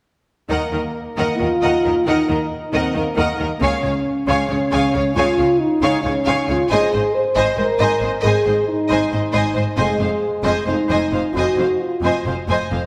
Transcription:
0.49 D#2 D#3 A#3 A#4 D#5 F#5
0.72 D#2 D#3 A#4 D#5
1.17 D#2 D#3 A#4 D#5 F#5
1.38 D#2 D#3 F4 A#4 D#5
1.62 D#2 D#3 A#4 D#5 F#5
1.84 D#2 D#3 A#4 D#5
2.06 D#2 D#3 D#4 A#4 D#5 F#5
2.29 D#2 D#3 A#4 D#5
2.73 D#2 D#3 C4 A#4 D#5 F#5
2.94 D#2 D#3 A#3 A#4 D#5
3.17 D#2 D#3 A#4 D#5 F#5
3.39 D#2 D#3 A#4 D#5
3.60 C#2 C#3 C#4 C#5 F5 G#5
3.83 C#2 C#3 C#5 F5
4.27 C#2 C#3 C#5 F5 G#5
4.49 C#2 C#3 C#4 C#5 F5
4.71 C#2 C#3 C#5 F5 G#5
4.93 C#2 C#3 C#5 F5
5.15 C#2 C#3 F4 C#5 F5 G#5
5.38 C#2 C#3 C#5 F5
5.59 D#4
5.82 C#2 C#3 C#5 F5 G#5
6.03 C#2 C#3 C#4 C#5 F5
6.25 C#2 C#3 C#5 F5 G#5
6.48 C#2 C#3 F4 C#5 F5
6.69 G#1 G#2 G#4 C5 D#5 G#5
6.92 G#1 G#2 C5 D#5
7.14 C5
7.35 G#1 G#2 C5 D#5 G#5
7.57 G#1 G#2 A#4 C5 D#5
7.79 G#1 G#2 C5 D#5 G#5
8.00 G#1 G#2 C5 D#5
8.21 G#1 G#2 G#4 C5 D#5
8.26 G#5
8.44 G#1 G#2 C5 D#5
8.68 D#4
8.88 G#1 G#2 C5 D#5 G#5
9.10 G#1 G#2 C5 D#5
9.32 G#1 G#2 C5 D#5 G#5
9.55 G#1 G#2 C5 D#5
9.77 F1 F2 G#3 C5 D#5 G#5
9.99 F1 F2 C5 F5
10.44 F1 F2 C5 D#5 G#5
10.67 F1 F2 D#4 C5 F5
10.88 F1 F2 C5 D#5 G#5
11.12 F1 F2 C5 F5
11.34 F1 F2 F#4 C5 D#5 G#5
11.57 F1 F2 C5 F5
11.81 F4
12.02 F1 F2 C5 D#5 G#5
12.25 F1 F2 C5 F5
12.48 F1 F2 C5 D#5 G#5
12.71 F1 F2 C5 F5

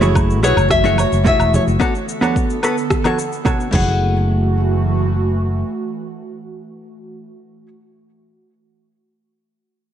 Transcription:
Already playing: F#1 E3 A3 F#4 C#5
0.01 A3 E4 F#4 G#4 C#5, high conga, cabasa
0.15 kick, cabasa, low woodblock
0.30 cabasa
0.43 B1 A3 E4 F#4 G#4 B4 C#5, cabasa
0.57 F#1, cabasa, low woodblock
0.70 E5, kick, cross-stick, cabasa
0.84 A3 E4 F#4 G#4 C#5, high conga, cabasa
0.98 C#5, cabasa, low woodblock
1.12 F#1, cabasa
1.24 A3 E4 F#4 G#4 C#5 E5, kick, low conga, cabasa
1.39 E1, cabasa, low woodblock
1.54 C#5, high conga, low conga, cabasa
1.67 F#1, cabasa
1.80 D3 B3 D4 F#4 A4 C#5, kick, cabasa, low woodblock
1.95 cabasa
2.09 cabasa
2.21 B3 D4 F#4 A4 C#5, high conga, cabasa, low woodblock
2.36 kick, cabasa
2.50 cabasa
2.63 B3 D4 F#4 A4 B4, cabasa, low woodblock
2.78 cabasa
2.90 kick, cross-stick, cabasa
3.04 B3 D4 F#4 A4 C#5, high conga, cabasa, low woodblock
3.19 cabasa
3.32 cabasa
3.45 B3 D4 F#4 A4 C#5, kick, low conga, cabasa, low woodblock
3.60 cabasa
3.71 F#1 E3 A3 E4 F#4 G#4, kick, crash, high conga, low conga
3.75 C#5 F#5

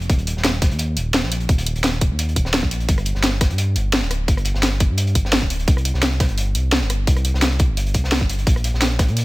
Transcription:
0.01 closed hi-hat
0.10 D#1, kick, closed hi-hat
0.18 closed hi-hat
0.27 closed hi-hat
0.36 D#1, snare
0.44 snare, closed hi-hat
0.62 kick, snare, closed hi-hat
0.71 D#2, closed hi-hat
0.79 closed hi-hat
0.97 D#1, closed hi-hat
1.14 snare, closed hi-hat
1.23 A#1, snare
1.32 closed hi-hat
1.40 closed hi-hat
1.49 D#1, kick, closed hi-hat
1.58 closed hi-hat
1.66 closed hi-hat
1.76 D#1, closed hi-hat
1.84 snare, closed hi-hat
2.01 kick, closed hi-hat
2.11 D#2
2.19 closed hi-hat
2.29 closed hi-hat
2.36 D#1, kick, closed hi-hat
2.45 snare
2.53 snare, closed hi-hat
2.63 A#1, kick
2.71 closed hi-hat
2.80 closed hi-hat
2.89 G1, kick, closed hi-hat
2.98 cross-stick, closed hi-hat
3.06 closed hi-hat
3.15 G1, snare
3.23 snare, closed hi-hat
3.41 kick, cross-stick, snare, closed hi-hat
3.50 G2, closed hi-hat
3.58 closed hi-hat
3.76 G1, closed hi-hat
3.93 snare, closed hi-hat
4.02 D1, snare
4.11 cross-stick, closed hi-hat
4.28 G1, kick, closed hi-hat
4.37 cross-stick, closed hi-hat
4.45 closed hi-hat
4.54 G1, snare
4.63 snare, closed hi-hat
4.80 kick, closed hi-hat
4.90 G2
4.98 closed hi-hat
5.07 closed hi-hat
5.15 G1, kick, closed hi-hat
5.25 snare
5.32 snare, closed hi-hat
5.42 D1, kick
5.50 closed hi-hat
5.60 closed hi-hat
5.68 C2, kick, closed hi-hat
5.77 cross-stick, closed hi-hat
5.85 closed hi-hat
5.94 C2, snare
6.02 snare, closed hi-hat
6.20 kick, cross-stick, snare, closed hi-hat
6.29 G1, closed hi-hat
6.38 closed hi-hat
6.55 C2, closed hi-hat
6.72 snare, closed hi-hat
6.81 G1, snare
6.90 cross-stick, closed hi-hat
7.07 C2, kick, closed hi-hat
7.16 cross-stick, closed hi-hat
7.25 closed hi-hat
7.34 C2, snare
7.42 snare, closed hi-hat
7.59 kick, closed hi-hat
7.69 G1
7.77 closed hi-hat
7.86 closed hi-hat
7.94 C2, kick, closed hi-hat
8.04 snare
8.12 snare, closed hi-hat
8.21 G1, kick
8.29 closed hi-hat
8.39 closed hi-hat
8.47 A#1, kick, closed hi-hat
8.56 cross-stick, closed hi-hat
8.64 closed hi-hat
8.73 A#1, snare
8.82 snare, closed hi-hat
8.99 kick, cross-stick, snare, closed hi-hat
9.08 A#2, closed hi-hat
9.17 closed hi-hat

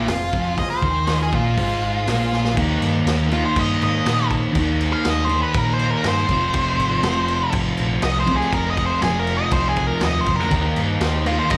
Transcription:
0.07 F1 F2 F4 G#4 C5, snare, open hi-hat
0.33 F1 F2, kick
0.58 F4 G#4 C5 D#5, muted distorted electric guitar stroke, muted picked electric bass stroke, kick, open hi-hat
0.70 C5
0.82 D#2 D#3, kick
1.07 F4 G#4 D#5, snare, open hi-hat
1.23 G#4
1.32 A#1 A#2 F4, kick
1.57 G#1 G#2 F4 G#4 C5, kick, open hi-hat
2.07 A#1 A#2 F4 G#4 C5, snare, open hi-hat
2.32 snare
2.45 snare
2.54 D#2 D#3 A#3, kick, crash
2.60 D#4
2.81 G2, crash
3.06 D#2, snare, crash
3.30 A#3 D#4 F4, crash
3.35 D#3
3.45 C5
3.56 G2 D#5, kick, crash
3.81 G#2 D#5, crash
4.06 A#2, snare, crash
4.19 snare
4.31 kick, crash
4.53 D#2 D#3 A#3, kick, crash
4.59 D#4
4.81 crash
4.93 F5
5.05 D#2, snare, crash
5.10 D#5
5.25 D#4 C5
5.29 D#3 A#3, crash
5.42 B4
5.54 A#2 A#4, kick, crash
5.74 C5
5.79 crash
5.90 A#4
6.04 G2, snare, crash
6.08 C5
6.17 snare
6.27 F1 F2 C3, kick, crash
6.32 F3
6.53 F1, kick, crash
6.78 G#1, crash
7.01 F1 F2 C3, snare, crash
7.07 F3
7.28 crash
7.52 G#1, kick, crash
7.77 A#1, crash
8.02 C2 D#5, snare, crash
8.20 C5
8.26 F2 C3, kick, crash
8.32 F3
8.36 G#4, snare
8.52 F1 A#4, kick, crash
8.70 D#5
8.77 kick, crash
8.86 C5
9.01 F1 F2 C3 G#4, snare, crash
9.06 F3
9.19 A#4
9.27 crash
9.37 D#5
9.51 C2 C5, kick, crash
9.68 G#4
9.76 kick, crash
9.87 A#4
10.01 D#2, snare, crash
10.05 D#5
10.21 C5
10.26 F2, kick, crash
10.36 A#4, snare
10.50 D#2 D#3 A#3 D#4 G4 A#4, kick, crash
10.56 D#4
10.76 G2, crash
11.00 D#2 D#4 G4 C5, snare, crash
11.26 A#3 D#4 F4, crash
11.31 D#3
11.39 C5
11.50 G2 D#4 G4 A#4 D#5, kick, crash

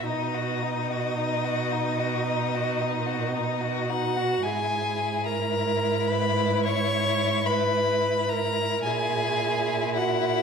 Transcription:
0.05 B2 D#4 D#5
0.34 F#4
0.63 D#4
0.91 F#4
1.17 D#4
1.45 F#4
1.72 D#4
2.00 F#4
2.26 D#4
2.54 F#4
2.82 D#4
3.06 F#4
3.35 D#4
3.62 F#4
3.90 D#4 F#4 F#5
4.17 F#4
4.43 G#2 E4 G#4 G#5
5.26 A#4 A#5
6.08 B4 B5
6.64 C#5 C#6
7.46 B4 B5
8.29 A#4 A#5
8.83 A#2 E4 G#4 G#5
9.96 F#4 F#5

